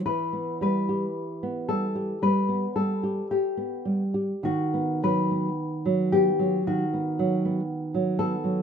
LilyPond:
<<
  \new Staff \with { instrumentName = "Nylon-string guitar" } { \time 4/4 \key e \minor \tempo 4 = 56 b'8 b'4 a'8 b'8 a'8 g'4 | fis'8 b'4 g'8 fis'4. a'8 | }
  \new Staff \with { instrumentName = "Nylon-string guitar" } { \time 4/4 \key e \minor e16 b16 g16 g'8 b16 g16 g'16 g16 b16 g16 g'8 b16 g16 g'16 | dis16 b16 fis16 b8 fis16 b16 fis16 dis16 b16 fis16 b8 fis16 b16 fis16 | }
>>